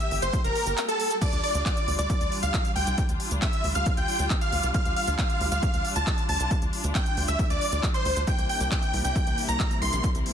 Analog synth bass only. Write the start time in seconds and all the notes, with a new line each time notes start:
0.11 G1
0.22 G1
0.44 F1
0.66 G1
1.33 D2
1.55 D2
1.88 D2
1.99 D2
2.21 D2
2.43 D2
2.76 D2
2.87 C2
3.09 D2
3.31 D2
3.64 D2
3.75 D2
3.97 D2
4.19 D2
4.52 D2
4.63 C2
4.86 D2
5.08 D2
5.41 D2
5.52 D2
5.74 D2
5.96 D2
6.29 D2
6.40 C2
6.62 D2
6.84 D2
7.17 D2
7.28 D2
7.50 D2
7.72 D2
8.05 D2
8.16 D2
8.38 C2
8.60 C2
8.94 C2
9.05 C2
9.27 C2
9.49 C2
9.82 C2
9.93 A#1
10.15 C2